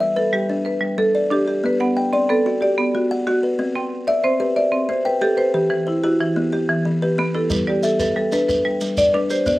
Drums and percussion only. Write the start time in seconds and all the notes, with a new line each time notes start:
7.50 shekere
7.83 shekere
8.00 shekere
8.32 shekere
8.49 shekere
8.81 shekere
8.97 shekere
9.30 shekere
9.46 shekere